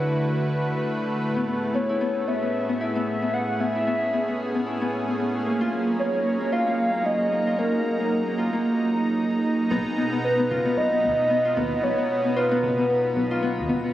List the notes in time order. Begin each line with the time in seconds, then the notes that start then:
Already playing: D3 A3 E4 F#4 B4
1.21 A2
1.36 B3 G#4
1.48 B3
1.70 C#4
1.74 B3 C#5
1.89 E4
2.01 B3
2.27 B3 E5
2.42 B3
2.69 B3
2.81 E4 E5
2.95 B3
3.22 B3
3.34 B3 F#5
3.60 B3 E5
3.75 E4
3.87 B3
4.13 B3
4.28 B3
4.55 B3
4.66 E4
4.81 B3
5.08 B3
5.20 B3
5.46 F#3 A#3
5.61 F4
5.72 A#3 A#5
5.83 D#4
5.99 A#3 C#5
6.14 A#3
6.41 A#3
6.52 F4 F5
6.67 A#3
6.94 A#3
7.05 A#3 D#5
7.32 A#3
7.47 F4
7.58 A#3 A#4
7.85 A#3
8.00 A#3
8.26 A#3
8.38 F4
8.53 A#3
9.71 B1 B2 B3
9.90 B3
9.97 B3
10.12 B3
10.24 B4
10.39 B3
10.50 F#1 F4
10.65 B3
10.77 B1 D#5
10.92 B3
11.04 D#2 B3
11.30 B3
11.45 F4
11.57 D#2 B3
11.83 B1 B3 C#5
11.98 B3
12.25 B3
12.36 F4 B4
12.51 B3
12.63 F#1
12.78 B3
12.89 B3
13.16 B1 B3
13.31 F4
13.43 B3
13.57 D#2
13.69 F#1 B3
13.84 B3